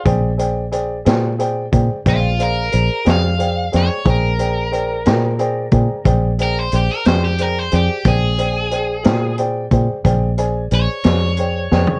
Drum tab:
HH |x-x-x-x-x-x-x-x-x-x-x-x-|x-x-x-x-x-x-x-x-x-x-x-x-|x-x-x-x-x-x-x-x-x-x-x---|
SD |------o-----o-----o---o-|------o-----------o-----|------o-----------o---o-|
FT |------------------------|------------------------|-----------------------o|
BD |o---------o-o-----------|o---------o-o-----------|o---------o-o-----------|